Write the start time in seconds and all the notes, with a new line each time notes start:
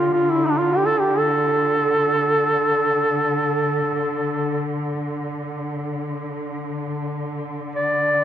Already playing: D3 F4
0.13 F4
0.31 E4
0.46 D4
0.58 F4
0.73 G4
0.86 A4
1.00 G4
1.19 A4
7.76 D5